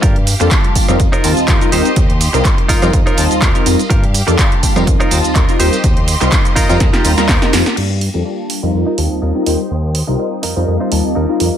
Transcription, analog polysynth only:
X:1
M:4/4
L:1/16
Q:"Swing 16ths" 1/4=124
K:Fmix
V:1 name="Analog polysynth"
z3 [G,B,DFA] [G,B,DFa]3 [G,CEFB]3 [G,CEFa]3 [G,CEFB] [G,CEFB] z | z3 [G,CEFB] G,3 [G,CEFB]3 [G,CEFa]3 [G,CEFB] [G,CEFB] z | z3 [G,B,DFA] [G,B,DFa]3 [G,CEFB]3 [G,CEFa]3 [G,CEFB] [G,CEFB] z | z3 [G,CEFB] [G,CF]3 [G,CEFB]3 [G,CEFB] [G,CEFB]2 [G,CEFB] [G,CEFB] z |
z3 [G,B,DFA] [G,B,DFa]3 [G,CEFB]3 [G,CEFa]3 [G,CEFB] [G,CEFB] z | z3 [G,CEFB] [G,CEFB]3 [G,CEFB]3 [G,CEFa]3 [G,CEFB] [G,CEFB] z |]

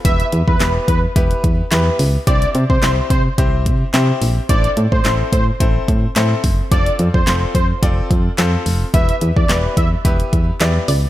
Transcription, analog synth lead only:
X:1
M:4/4
L:1/16
Q:1/4=108
K:Ephr
V:1 name="Analog synth lead"
e2 z B2 z B z8 z | d2 z c2 z c z8 z | d2 z c2 z c z8 z | d2 z c2 z c z8 z |
e2 z d2 z e z8 z |]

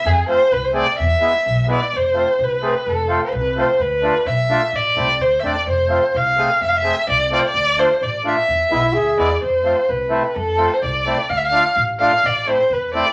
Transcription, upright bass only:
X:1
M:2/4
L:1/8
Q:1/4=128
K:none
V:1 name="Upright bass" clef=bass
F,, z C,,2 | E,, z B,,,2 | F,,,2 C,,2 | F,,,2 C,,2 |
D,,2 B,,,2 | A,,, C,, D,, E,, | F,,,2 C,,2 | F,,,2 C,,2 |
D,,2 A,,,2 | E,, B,,, D,, E,, | F,,2 C,,2 | F,,2 C,,2 |
D,,2 A,,,2 | A,,,2 E,,2 |]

